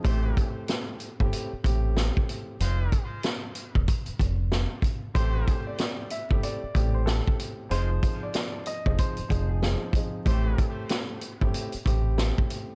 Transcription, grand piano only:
X:1
M:4/4
L:1/16
Q:"Swing 16ths" 1/4=94
K:Am
V:1 name="Grand piano"
[A,,A,CG]6 z [A,,A,CG]2 z [A,,A,CG]6 | z16 | [A,,A,CG]6 z [A,,A,CG]2 z [A,,A,CG]6 | [F,C_E_A]6 z [F,CEA]2 z [F,CEA]2 [F,CEA]2 [F,CEA]2 |
[A,,A,CG]6 z [A,,A,CG]2 z [A,,A,CG]6 |]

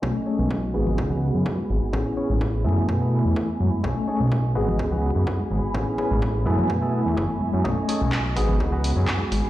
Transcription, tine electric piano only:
X:1
M:4/4
L:1/8
Q:1/4=126
K:Bmix
V:1 name="Tine electric piano"
[A,CDg]3 [B,DFG]4- [B,DFG] | [B,CEG]3 [A,B,Eg]4- [A,B,Eg] | [A,CDg]3 [B,DFG]4- [B,DFG] | [B,CEG]3 [A,B,Eg]4- [A,B,Eg] |
[A,CDg]3 [B,DFG]4- [B,DFG] |]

